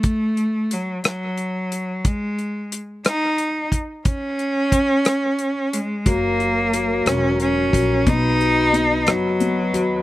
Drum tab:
HH |xxxxxx|xxxxxx|xxxxxx|xxxxxx|
SD |---r--|---r--|---r--|---r--|
BD |o-----|o----o|o-o---|o----o|

HH |xxxxxx|
SD |---r--|
BD |o-----|